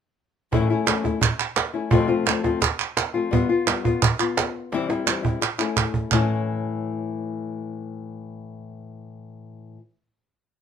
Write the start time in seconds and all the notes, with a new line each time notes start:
0.52 A2 E3 A3 C#4 E4, cajon bass
0.70 A3 C#4 E4
0.87 E3 A3 C#4 E4, cajon slap, clap
1.04 A3 C#4 E4, cajon bass, cajon slap
1.21 muted nylon-string guitar stroke, cajon bass, clap
1.40 clap
1.56 cajon slap, clap
1.74 A3 C#4 E4
1.90 F2 C3 F3 A3 C4 F4, cajon bass
2.08 F3 A3 C4 F4
2.26 F3 A3 C4 F4, cajon slap, clap
2.44 F3 A3 C4 F4, cajon bass, cajon slap
2.61 muted nylon-string guitar stroke, cajon bass, cajon slap, clap
2.80 clap
2.97 cajon slap, clap
3.14 F3 A3 C4 F4
3.31 G3 B3 F4, cajon bass
3.49 B3 F4
3.67 G3 B3 F4, cajon slap, clap
3.84 B3 F4, cajon bass
4.02 muted nylon-string guitar stroke, cajon bass, clap
4.19 B3 F4, clap
4.37 cajon slap, clap
4.72 C3 E3 G3 C4 E4, cajon slap
4.89 G3 C4 E4, cajon slap
5.06 E3 G3 C4 E4, cajon slap, clap
5.23 G3 C4 E4, cajon bass
5.41 muted nylon-string guitar stroke, clap
5.58 A3 C#4 E4, clap
5.77 cajon bass, clap
5.94 cajon bass
6.11 A2 E3 A3 C#4 E4, cajon bass, clap